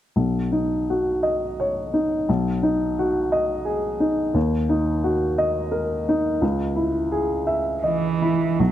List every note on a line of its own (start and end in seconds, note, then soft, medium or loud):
0.16 2.24 B1 soft
0.52 1.08 D#4 soft
0.90 1.45 F#4 soft
1.23 1.79 D#5 soft
1.60 2.15 C#5 soft
1.94 2.28 D#4 soft
2.29 4.32 B1 soft
2.63 3.18 D#4 soft
2.99 3.53 F#4 soft
3.32 3.87 D#5 soft
3.65 4.21 G#4 soft
4.00 4.35 D#4 soft
4.34 6.37 D#2 soft
4.69 5.24 D#4 soft
5.04 5.59 F#4 soft
5.38 5.93 D#5 soft
5.72 6.27 A#4 soft
6.09 6.43 D#4 soft
6.42 8.55 C#2 soft
6.76 7.34 E4 soft
7.12 7.70 G#4 soft
7.47 8.06 E5 soft
7.84 8.60 E3 medium
7.84 8.44 D#5 soft
8.22 8.59 E4 soft
8.59 8.72 B1 soft
8.59 8.72 F#3 medium